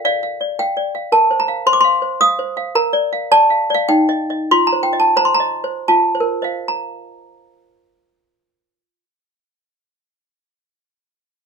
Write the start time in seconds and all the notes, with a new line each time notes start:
0.05 D5 F5
0.23 F5
0.41 D5
0.59 F5 G5
0.77 D5
0.95 F5
1.12 A#4 A5
1.31 C5
1.40 A#5
1.48 F5
1.67 C5 C6
1.73 D6
1.81 F5 C6
2.02 C5
2.21 F5 D#6
2.39 C5
2.57 F5
2.75 A#4 A#5
2.93 D5
3.13 F5
3.31 D5 A5
3.50 F5
3.70 D5
3.74 F5
3.89 D#4 G5
4.09 D#5
4.30 D#5
4.51 F4 C6
4.67 A#5
4.72 C5
4.83 G5
4.93 D#5
5.00 A5
5.16 C5 A#5
5.25 C6
5.34 A#5
5.40 D#5
5.64 C5
5.88 F4 A5
6.15 C5
6.20 A#4
6.42 C5 D#5 F5
6.68 A#5